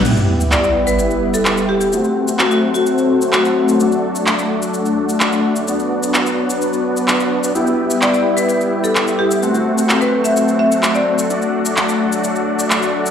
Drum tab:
CC |x---------------|----------------|----------------|----------------|
SH |xx-xxx-xxx-xxx-x|xx-xxx-xxx-xxx-x|xx-xxx-xxx-xxx-x|xx-xxx-xxx-xxx-x|
CP |----x-------x---|----x-------x---|----x-------x---|----x-------x---|

CC |----------------|----------------|----------------|
SH |xx-xxx-xxx-xxx-x|xx-xxx-xxx-xxx-x|xx-xxx-xxx-xxx-x|
CP |----x-------x---|----x-------x---|----x-------x---|